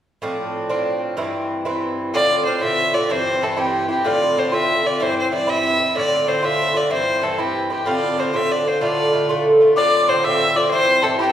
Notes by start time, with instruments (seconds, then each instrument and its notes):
0.22 bouzouki A2 F3 C4 D4
0.69 bouzouki A2 F3 C4 D4
1.17 bouzouki G2 E3 C4 E4
1.65 bouzouki G2 E3 C4 E4
2.14 bouzouki A2 D3 C4 F4, fiddle D5
2.45 bouzouki A2 D3 C4 F4, fiddle C5
2.61 bouzouki A2 D3 C4 F4, fiddle E5
2.93 bouzouki D3 C4 F4, fiddle D5
3.09 bouzouki G2 E3 C4 E4, fiddle C5
3.41 bouzouki G2 E3 C4 E4, fiddle A4
3.56 bouzouki G2 E3 C4 E4, fiddle G4
3.88 bouzouki E3 C4 E4, fiddle G4
4.04 bouzouki A2 D3 C4 F4, fiddle D5
4.36 bouzouki A2 D3 C4 F4, fiddle C5
4.52 bouzouki A2 D3 C4 F4, fiddle E5
4.83 bouzouki D3 C4 F4, fiddle D5
5.00 bouzouki G2 E3 C4 E4, fiddle C5
5.19 fiddle C5
5.31 bouzouki G2 E3 C4 E4, fiddle D5
5.47 bouzouki G2 E3 C4 E4, fiddle E5
5.79 bouzouki E3 C4 E4
5.95 bouzouki A2 D3 C4 F4, fiddle D5
6.27 bouzouki A2 D3 C4 F4, fiddle C5
6.43 bouzouki A2 D3 C4 F4, fiddle E5
6.74 bouzouki D3 C4 F4, fiddle D5
6.90 bouzouki G2 E3 C4 E4, fiddle C5
7.21 bouzouki G2 E3 C4 E4, fiddle A4
7.38 bouzouki G2 E3 C4 E4, fiddle G4
7.70 bouzouki E3 C4 E4, fiddle G4
7.86 bouzouki A2 D3 C4 F4, fiddle D5
8.17 bouzouki A2 D3 C4 F4, fiddle C5
8.33 bouzouki A2 D3 C4 F4, fiddle E5
8.51 fiddle D5
8.65 bouzouki D3 C4 F4, fiddle C5
8.81 bouzouki A2 D3 A3 F4, fiddle D5
9.13 bouzouki A2 D3 A3 F4
9.29 bouzouki A2 D3 A3 F4
9.61 bouzouki D3 A3 F4
9.76 bouzouki A2 D3 C4 F4, fiddle D5, tin whistle D6
10.08 bouzouki A2 D3 C4 F4, fiddle C5, tin whistle C6
10.24 bouzouki A2 D3 C4 F4, fiddle E5, tin whistle E6
10.55 bouzouki D3 C4 F4, fiddle D5, tin whistle D6
10.71 bouzouki G2 E3 C4 E4, fiddle C5, tin whistle C6
11.02 bouzouki G2 E3 C4 E4, fiddle A4, tin whistle A5
11.18 bouzouki G2 E3 C4 E4, fiddle G4, tin whistle G5
11.29 fiddle A4